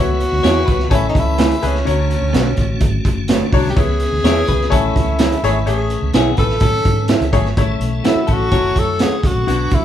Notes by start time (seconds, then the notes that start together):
Already playing: C#2 E3 A3 B3 E4 F#4 B4 C#5
0.20 closed hi-hat
0.32 D2
0.43 E2 B3 E4 G#4 C#5, snare, closed hi-hat
0.66 C#2 B4, kick, closed hi-hat
0.80 snare
0.90 A1 A3 C#4 A4 C#5 G#5, kick, closed hi-hat
0.94 E4
1.09 D#4
1.15 C#2 E4, kick, closed hi-hat
1.38 A3 E4 G#4 C#5, snare, closed hi-hat
1.52 closed hi-hat
1.62 C#2 A3 G#4 B4, closed hi-hat
1.67 C#4
1.75 snare
1.85 D2 D3 F#3 C#4 F#4 C#5, closed hi-hat
2.10 closed hi-hat
2.22 D2
2.33 B1 A3 D4 F#4 C#5, snare, closed hi-hat
2.57 A1, kick, closed hi-hat
2.80 G#1, kick, closed hi-hat
3.05 F#1, kick, closed hi-hat
3.28 A3 D4 F#4 C#5, snare, closed hi-hat
3.53 C2 F#3 D4 C#5, kick, open hi-hat
3.65 snare
3.70 G4
3.76 C#2 E3 B3 E4 G#4 B4 C#5, kick, closed hi-hat
4.00 closed hi-hat
4.12 D2
4.23 E2 C#4 E4 G#4 B4 C#5 E5, snare, closed hi-hat
4.48 C#2 B4, kick, closed hi-hat
4.61 snare
4.70 A1 A3 C#4 E4 A4 C#5 G#5, kick, closed hi-hat
4.96 C#2, kick, closed hi-hat
5.19 E4 G#4 C#5 E5, snare, closed hi-hat
5.32 closed hi-hat
5.43 G#1 A3 G#4 C#5, closed hi-hat
5.66 A1 A3 G#4 C#5, closed hi-hat
5.90 closed hi-hat
6.02 C#2
6.14 B1 B3 E4 G#4 C#5 E5, snare, closed hi-hat
6.37 A1 A4 B4, kick, closed hi-hat
6.49 snare
6.60 A2 C#4 A4, kick, closed hi-hat
6.85 G#2, kick, closed hi-hat
7.08 E4 G#4 C#5 E5, snare, closed hi-hat
7.21 C#2, closed hi-hat
7.33 G#1 A3 G#4 C#5, kick, closed hi-hat
7.45 snare
7.57 A1 E3 A3 C#4 E4 A4 C#5, kick, closed hi-hat
7.80 B1, closed hi-hat
8.04 A3 E4 F#4 A4 C#5 E5, snare, closed hi-hat
8.15 muted fingered electric bass stroke
8.27 A1 C#4 A4, kick, closed hi-hat
8.33 F#4
8.51 F#1 F#3 C#4 E4 A4 C#5, kick, closed hi-hat
8.76 F#2 A4, kick, closed hi-hat
8.99 C#4 G#4 A4 C#5 F#5, snare, closed hi-hat
9.23 C#2 F#4, kick, closed hi-hat
9.35 A#1
9.47 B1 D3 B3 D4 F#4, closed hi-hat
9.71 C#2 E4, kick, closed hi-hat